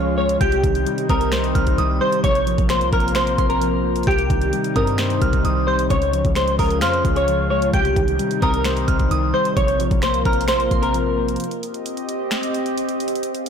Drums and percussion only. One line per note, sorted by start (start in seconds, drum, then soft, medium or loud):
0.29 closed hi-hat medium
0.41 kick loud
0.41 closed hi-hat medium
0.52 closed hi-hat medium
0.64 kick medium
0.64 closed hi-hat medium
0.75 closed hi-hat medium
0.87 closed hi-hat medium
0.98 closed hi-hat medium
1.09 kick loud
1.09 closed hi-hat medium
1.21 closed hi-hat medium
1.32 finger snap loud
1.32 snare loud
1.32 closed hi-hat medium
1.44 closed hi-hat medium
1.55 kick loud
1.55 closed hi-hat medium
1.67 kick medium
1.67 closed hi-hat medium
1.78 closed hi-hat medium
2.12 closed hi-hat medium
2.24 kick loud
2.24 closed hi-hat loud
2.35 closed hi-hat medium
2.47 closed hi-hat medium
2.58 kick loud
2.58 closed hi-hat medium
2.69 finger snap medium
2.69 snare medium
2.69 closed hi-hat medium
2.81 closed hi-hat medium
2.93 kick loud
2.93 closed hi-hat soft
2.93 open hi-hat medium
3.00 closed hi-hat medium
3.08 closed hi-hat medium
3.15 finger snap loud
3.15 snare loud
3.15 closed hi-hat medium
3.27 closed hi-hat medium
3.38 kick loud
3.38 closed hi-hat medium
3.50 closed hi-hat medium
3.62 closed hi-hat medium
3.96 closed hi-hat medium
4.03 kick loud
4.03 closed hi-hat medium
4.11 closed hi-hat medium
4.19 closed hi-hat medium
4.30 kick medium
4.30 closed hi-hat medium
4.42 closed hi-hat medium
4.53 closed hi-hat medium
4.64 closed hi-hat medium
4.76 kick loud
4.76 closed hi-hat medium
4.87 closed hi-hat medium
4.98 finger snap loud
4.98 snare loud
4.98 closed hi-hat medium
5.10 closed hi-hat medium
5.22 kick medium
5.22 closed hi-hat medium
5.33 kick medium
5.33 closed hi-hat medium
5.45 closed hi-hat medium
5.79 closed hi-hat medium
5.90 kick loud
5.90 closed hi-hat loud
6.02 closed hi-hat medium
6.13 closed hi-hat medium
6.25 kick loud
6.25 closed hi-hat medium
6.35 finger snap medium
6.35 snare loud
6.35 closed hi-hat medium
6.48 closed hi-hat medium
6.59 kick loud
6.59 open hi-hat medium
6.71 closed hi-hat medium
6.81 finger snap loud
6.81 snare loud
6.81 closed hi-hat medium
6.93 closed hi-hat medium
7.05 kick medium
7.05 closed hi-hat medium
7.16 closed hi-hat medium
7.28 closed hi-hat medium
7.62 closed hi-hat medium
7.74 kick loud
7.74 closed hi-hat medium
7.85 closed hi-hat medium
7.96 kick medium
7.96 closed hi-hat medium
8.08 closed hi-hat medium
8.19 closed hi-hat medium
8.31 closed hi-hat medium
8.42 kick loud
8.42 closed hi-hat medium
8.54 closed hi-hat medium
8.64 finger snap loud
8.64 snare loud
8.64 closed hi-hat medium
8.77 closed hi-hat medium
8.88 kick loud
8.88 closed hi-hat medium
8.99 kick medium
8.99 closed hi-hat medium
9.11 closed hi-hat medium
9.45 closed hi-hat medium
9.57 kick loud
9.57 closed hi-hat loud
9.68 closed hi-hat medium
9.80 closed hi-hat medium
9.91 kick loud
9.91 closed hi-hat medium
10.02 finger snap medium
10.02 snare loud
10.02 closed hi-hat medium
10.14 closed hi-hat medium
10.25 kick loud
10.25 closed hi-hat soft
10.25 open hi-hat medium
10.33 closed hi-hat medium
10.41 closed hi-hat medium
10.48 finger snap medium
10.48 snare loud
10.48 closed hi-hat medium
10.60 closed hi-hat medium
10.71 kick medium
10.71 closed hi-hat medium
10.83 closed hi-hat medium
10.94 closed hi-hat medium
11.28 closed hi-hat medium
11.36 closed hi-hat medium
11.40 closed hi-hat medium
11.44 closed hi-hat medium
11.51 closed hi-hat medium
11.63 closed hi-hat medium
11.74 closed hi-hat medium
11.86 closed hi-hat medium
11.97 closed hi-hat medium
12.09 closed hi-hat medium
12.31 finger snap loud
12.31 snare loud
12.31 closed hi-hat medium
12.43 closed hi-hat medium
12.54 closed hi-hat medium
12.66 closed hi-hat medium
12.78 closed hi-hat medium
12.89 closed hi-hat medium
13.00 closed hi-hat medium
13.08 closed hi-hat medium
13.15 closed hi-hat medium
13.23 closed hi-hat medium
13.35 closed hi-hat medium